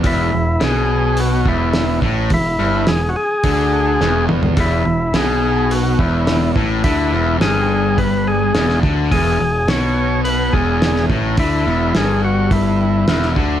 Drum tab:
HH |o---o---o---o---|o---o---o-------|o---o---o---o---|o---o---o---o---|
SD |----o-------o---|----o-------o---|----o-------o---|----o-------oo--|
T2 |----------------|--------------o-|----------------|----------------|
FT |----------------|---------------o|----------------|----------------|
BD |o---------o---o-|o-------o-------|o---------o---o-|o-------o-----o-|

HH |o---o---o---o---|o---o---o---o---|
SD |----o-------oo--|----o-------oo--|
T2 |----------------|----------------|
FT |----------------|----------------|
BD |o---------o---o-|o-------o-----o-|